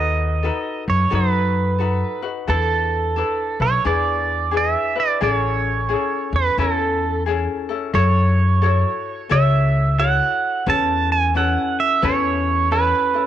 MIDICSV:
0, 0, Header, 1, 4, 480
1, 0, Start_track
1, 0, Key_signature, 3, "major"
1, 0, Tempo, 681044
1, 1751, Time_signature, 4, 2, 24, 8
1, 5593, Key_signature, 3, "minor"
1, 9351, End_track
2, 0, Start_track
2, 0, Title_t, "Pedal steel guitar"
2, 0, Program_c, 0, 26
2, 0, Note_on_c, 0, 75, 89
2, 590, Note_off_c, 0, 75, 0
2, 632, Note_on_c, 0, 73, 80
2, 805, Note_off_c, 0, 73, 0
2, 812, Note_on_c, 0, 71, 73
2, 1557, Note_off_c, 0, 71, 0
2, 1760, Note_on_c, 0, 69, 83
2, 2551, Note_on_c, 0, 73, 90
2, 2562, Note_off_c, 0, 69, 0
2, 2723, Note_off_c, 0, 73, 0
2, 2726, Note_on_c, 0, 74, 86
2, 3213, Note_off_c, 0, 74, 0
2, 3219, Note_on_c, 0, 76, 103
2, 3518, Note_off_c, 0, 76, 0
2, 3522, Note_on_c, 0, 74, 89
2, 3686, Note_off_c, 0, 74, 0
2, 3688, Note_on_c, 0, 74, 101
2, 3773, Note_off_c, 0, 74, 0
2, 3773, Note_on_c, 0, 73, 101
2, 4482, Note_on_c, 0, 71, 77
2, 4487, Note_off_c, 0, 73, 0
2, 4649, Note_off_c, 0, 71, 0
2, 4652, Note_on_c, 0, 69, 65
2, 5094, Note_off_c, 0, 69, 0
2, 5603, Note_on_c, 0, 73, 85
2, 6565, Note_off_c, 0, 73, 0
2, 6568, Note_on_c, 0, 76, 80
2, 7045, Note_on_c, 0, 78, 107
2, 7055, Note_off_c, 0, 76, 0
2, 7534, Note_off_c, 0, 78, 0
2, 7539, Note_on_c, 0, 81, 113
2, 7834, Note_off_c, 0, 81, 0
2, 7837, Note_on_c, 0, 80, 91
2, 7992, Note_off_c, 0, 80, 0
2, 8012, Note_on_c, 0, 78, 82
2, 8316, Note_off_c, 0, 78, 0
2, 8316, Note_on_c, 0, 76, 97
2, 8488, Note_off_c, 0, 76, 0
2, 8491, Note_on_c, 0, 73, 87
2, 8966, Note_on_c, 0, 71, 97
2, 8977, Note_off_c, 0, 73, 0
2, 9325, Note_off_c, 0, 71, 0
2, 9351, End_track
3, 0, Start_track
3, 0, Title_t, "Ukulele"
3, 0, Program_c, 1, 24
3, 0, Note_on_c, 1, 63, 68
3, 0, Note_on_c, 1, 66, 78
3, 0, Note_on_c, 1, 69, 72
3, 0, Note_on_c, 1, 71, 76
3, 298, Note_off_c, 1, 69, 0
3, 300, Note_off_c, 1, 63, 0
3, 301, Note_on_c, 1, 69, 55
3, 303, Note_off_c, 1, 66, 0
3, 309, Note_on_c, 1, 63, 54
3, 311, Note_off_c, 1, 71, 0
3, 312, Note_on_c, 1, 66, 62
3, 314, Note_on_c, 1, 71, 56
3, 774, Note_off_c, 1, 63, 0
3, 775, Note_off_c, 1, 69, 0
3, 778, Note_off_c, 1, 66, 0
3, 778, Note_on_c, 1, 69, 73
3, 782, Note_on_c, 1, 63, 81
3, 786, Note_on_c, 1, 66, 84
3, 788, Note_off_c, 1, 71, 0
3, 791, Note_on_c, 1, 71, 77
3, 1256, Note_off_c, 1, 69, 0
3, 1258, Note_off_c, 1, 63, 0
3, 1259, Note_on_c, 1, 69, 56
3, 1262, Note_off_c, 1, 66, 0
3, 1267, Note_on_c, 1, 63, 57
3, 1271, Note_on_c, 1, 66, 60
3, 1273, Note_off_c, 1, 71, 0
3, 1275, Note_on_c, 1, 71, 55
3, 1559, Note_off_c, 1, 71, 0
3, 1565, Note_off_c, 1, 66, 0
3, 1565, Note_off_c, 1, 69, 0
3, 1568, Note_on_c, 1, 71, 55
3, 1570, Note_off_c, 1, 63, 0
3, 1573, Note_on_c, 1, 66, 47
3, 1578, Note_on_c, 1, 63, 42
3, 1745, Note_on_c, 1, 69, 63
3, 1748, Note_off_c, 1, 63, 0
3, 1748, Note_off_c, 1, 66, 0
3, 1748, Note_off_c, 1, 71, 0
3, 1751, Note_on_c, 1, 62, 69
3, 1751, Note_on_c, 1, 64, 72
3, 1755, Note_on_c, 1, 71, 75
3, 2219, Note_off_c, 1, 69, 0
3, 2227, Note_on_c, 1, 69, 54
3, 2231, Note_off_c, 1, 62, 0
3, 2234, Note_on_c, 1, 62, 54
3, 2238, Note_off_c, 1, 64, 0
3, 2239, Note_off_c, 1, 71, 0
3, 2241, Note_on_c, 1, 64, 59
3, 2242, Note_on_c, 1, 71, 62
3, 2528, Note_off_c, 1, 71, 0
3, 2533, Note_off_c, 1, 69, 0
3, 2535, Note_off_c, 1, 64, 0
3, 2536, Note_off_c, 1, 62, 0
3, 2536, Note_on_c, 1, 71, 37
3, 2543, Note_on_c, 1, 64, 40
3, 2548, Note_on_c, 1, 62, 35
3, 2706, Note_off_c, 1, 62, 0
3, 2709, Note_off_c, 1, 64, 0
3, 2711, Note_on_c, 1, 68, 69
3, 2712, Note_off_c, 1, 71, 0
3, 2715, Note_on_c, 1, 62, 77
3, 2718, Note_on_c, 1, 64, 76
3, 2722, Note_on_c, 1, 71, 75
3, 3177, Note_off_c, 1, 68, 0
3, 3179, Note_off_c, 1, 62, 0
3, 3180, Note_on_c, 1, 68, 59
3, 3188, Note_on_c, 1, 62, 53
3, 3189, Note_off_c, 1, 71, 0
3, 3190, Note_off_c, 1, 64, 0
3, 3193, Note_on_c, 1, 64, 56
3, 3198, Note_on_c, 1, 71, 54
3, 3484, Note_off_c, 1, 71, 0
3, 3489, Note_off_c, 1, 68, 0
3, 3490, Note_off_c, 1, 64, 0
3, 3492, Note_on_c, 1, 71, 52
3, 3493, Note_off_c, 1, 62, 0
3, 3499, Note_on_c, 1, 64, 41
3, 3510, Note_on_c, 1, 62, 39
3, 3669, Note_off_c, 1, 64, 0
3, 3670, Note_off_c, 1, 71, 0
3, 3670, Note_on_c, 1, 68, 69
3, 3671, Note_off_c, 1, 62, 0
3, 3674, Note_on_c, 1, 61, 65
3, 3678, Note_on_c, 1, 64, 81
3, 3683, Note_on_c, 1, 69, 73
3, 4141, Note_off_c, 1, 68, 0
3, 4150, Note_on_c, 1, 68, 51
3, 4153, Note_off_c, 1, 61, 0
3, 4156, Note_on_c, 1, 61, 59
3, 4158, Note_off_c, 1, 64, 0
3, 4161, Note_off_c, 1, 69, 0
3, 4161, Note_on_c, 1, 64, 54
3, 4163, Note_on_c, 1, 69, 59
3, 4631, Note_off_c, 1, 68, 0
3, 4637, Note_off_c, 1, 61, 0
3, 4638, Note_off_c, 1, 64, 0
3, 4640, Note_on_c, 1, 61, 76
3, 4641, Note_on_c, 1, 64, 87
3, 4643, Note_off_c, 1, 69, 0
3, 4643, Note_on_c, 1, 69, 74
3, 5115, Note_off_c, 1, 69, 0
3, 5118, Note_on_c, 1, 68, 56
3, 5120, Note_off_c, 1, 61, 0
3, 5123, Note_on_c, 1, 61, 47
3, 5124, Note_off_c, 1, 64, 0
3, 5127, Note_on_c, 1, 64, 60
3, 5133, Note_on_c, 1, 69, 59
3, 5412, Note_off_c, 1, 69, 0
3, 5419, Note_off_c, 1, 68, 0
3, 5421, Note_off_c, 1, 61, 0
3, 5421, Note_off_c, 1, 64, 0
3, 5421, Note_on_c, 1, 69, 50
3, 5430, Note_on_c, 1, 64, 44
3, 5433, Note_on_c, 1, 61, 42
3, 5586, Note_off_c, 1, 69, 0
3, 5588, Note_off_c, 1, 64, 0
3, 5594, Note_on_c, 1, 69, 71
3, 5597, Note_on_c, 1, 64, 73
3, 5600, Note_off_c, 1, 61, 0
3, 5603, Note_on_c, 1, 66, 68
3, 5604, Note_on_c, 1, 73, 79
3, 6071, Note_off_c, 1, 69, 0
3, 6073, Note_on_c, 1, 69, 58
3, 6075, Note_off_c, 1, 66, 0
3, 6077, Note_off_c, 1, 64, 0
3, 6080, Note_on_c, 1, 64, 48
3, 6082, Note_off_c, 1, 73, 0
3, 6083, Note_on_c, 1, 66, 55
3, 6085, Note_on_c, 1, 73, 57
3, 6547, Note_off_c, 1, 69, 0
3, 6550, Note_on_c, 1, 69, 74
3, 6551, Note_off_c, 1, 66, 0
3, 6553, Note_off_c, 1, 64, 0
3, 6556, Note_on_c, 1, 64, 88
3, 6557, Note_off_c, 1, 73, 0
3, 6559, Note_on_c, 1, 66, 78
3, 6560, Note_on_c, 1, 73, 95
3, 7033, Note_off_c, 1, 69, 0
3, 7036, Note_off_c, 1, 66, 0
3, 7036, Note_on_c, 1, 69, 58
3, 7040, Note_off_c, 1, 64, 0
3, 7043, Note_on_c, 1, 64, 67
3, 7047, Note_on_c, 1, 66, 65
3, 7048, Note_off_c, 1, 73, 0
3, 7050, Note_on_c, 1, 73, 67
3, 7512, Note_off_c, 1, 69, 0
3, 7514, Note_off_c, 1, 66, 0
3, 7515, Note_on_c, 1, 71, 76
3, 7517, Note_off_c, 1, 64, 0
3, 7517, Note_on_c, 1, 61, 72
3, 7520, Note_on_c, 1, 64, 69
3, 7523, Note_off_c, 1, 73, 0
3, 7525, Note_on_c, 1, 69, 87
3, 7985, Note_off_c, 1, 71, 0
3, 7993, Note_on_c, 1, 71, 54
3, 7995, Note_off_c, 1, 64, 0
3, 7997, Note_off_c, 1, 61, 0
3, 8000, Note_on_c, 1, 61, 61
3, 8004, Note_on_c, 1, 64, 63
3, 8008, Note_off_c, 1, 69, 0
3, 8011, Note_on_c, 1, 69, 60
3, 8464, Note_off_c, 1, 71, 0
3, 8472, Note_off_c, 1, 64, 0
3, 8472, Note_on_c, 1, 71, 84
3, 8474, Note_off_c, 1, 61, 0
3, 8477, Note_on_c, 1, 61, 84
3, 8479, Note_off_c, 1, 69, 0
3, 8480, Note_on_c, 1, 64, 91
3, 8481, Note_on_c, 1, 69, 79
3, 8948, Note_off_c, 1, 71, 0
3, 8955, Note_off_c, 1, 64, 0
3, 8956, Note_on_c, 1, 71, 61
3, 8959, Note_off_c, 1, 61, 0
3, 8962, Note_on_c, 1, 61, 67
3, 8963, Note_on_c, 1, 64, 64
3, 8964, Note_off_c, 1, 69, 0
3, 8967, Note_on_c, 1, 69, 69
3, 9251, Note_off_c, 1, 69, 0
3, 9257, Note_off_c, 1, 71, 0
3, 9260, Note_off_c, 1, 64, 0
3, 9260, Note_on_c, 1, 69, 45
3, 9262, Note_off_c, 1, 61, 0
3, 9268, Note_on_c, 1, 64, 41
3, 9273, Note_on_c, 1, 61, 41
3, 9351, Note_off_c, 1, 61, 0
3, 9351, Note_off_c, 1, 64, 0
3, 9351, Note_off_c, 1, 69, 0
3, 9351, End_track
4, 0, Start_track
4, 0, Title_t, "Upright bass"
4, 0, Program_c, 2, 32
4, 0, Note_on_c, 2, 39, 87
4, 340, Note_off_c, 2, 39, 0
4, 618, Note_on_c, 2, 42, 86
4, 732, Note_off_c, 2, 42, 0
4, 793, Note_on_c, 2, 42, 89
4, 1416, Note_off_c, 2, 42, 0
4, 1750, Note_on_c, 2, 40, 96
4, 2260, Note_off_c, 2, 40, 0
4, 2536, Note_on_c, 2, 35, 76
4, 2650, Note_off_c, 2, 35, 0
4, 2715, Note_on_c, 2, 40, 89
4, 3338, Note_off_c, 2, 40, 0
4, 3677, Note_on_c, 2, 33, 89
4, 4185, Note_off_c, 2, 33, 0
4, 4460, Note_on_c, 2, 40, 84
4, 4573, Note_off_c, 2, 40, 0
4, 4635, Note_on_c, 2, 40, 87
4, 5258, Note_off_c, 2, 40, 0
4, 5596, Note_on_c, 2, 42, 91
4, 6219, Note_off_c, 2, 42, 0
4, 6560, Note_on_c, 2, 37, 81
4, 7182, Note_off_c, 2, 37, 0
4, 7517, Note_on_c, 2, 40, 88
4, 8141, Note_off_c, 2, 40, 0
4, 8478, Note_on_c, 2, 40, 86
4, 9101, Note_off_c, 2, 40, 0
4, 9351, End_track
0, 0, End_of_file